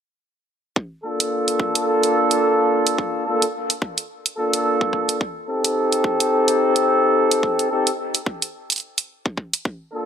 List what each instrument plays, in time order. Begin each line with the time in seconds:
0.76 kick
1.04 horn section A#3 D4 F4 A4
1.20 closed hi-hat
1.48 closed hi-hat
1.60 kick
1.75 closed hi-hat
2.03 closed hi-hat
2.31 closed hi-hat
2.87 closed hi-hat
2.98 kick
3.26 horn section A#3 D4 F4 A4
3.42 closed hi-hat
3.70 closed hi-hat
3.82 kick
3.98 closed hi-hat
4.26 closed hi-hat
4.38 horn section A#3 D4 F4 A4
4.53 closed hi-hat
4.81 kick
4.93 kick
5.09 closed hi-hat
5.21 kick
5.48 horn section C4 D#4 G4 A4
5.64 closed hi-hat
5.92 closed hi-hat
6.04 kick
6.20 closed hi-hat
6.48 closed hi-hat
6.76 closed hi-hat
7.31 closed hi-hat
7.43 kick
7.59 closed hi-hat
7.71 horn section C4 D#4 G4 A4
7.87 closed hi-hat
8.15 closed hi-hat
8.26 kick
8.42 closed hi-hat
8.70 closed hi-hat
8.72 closed hi-hat
8.76 closed hi-hat
8.78 closed hi-hat
8.80 closed hi-hat
8.98 closed hi-hat
9.26 kick
9.37 kick
9.53 closed hi-hat
9.65 kick
9.93 horn section A#3 D4 F4 A4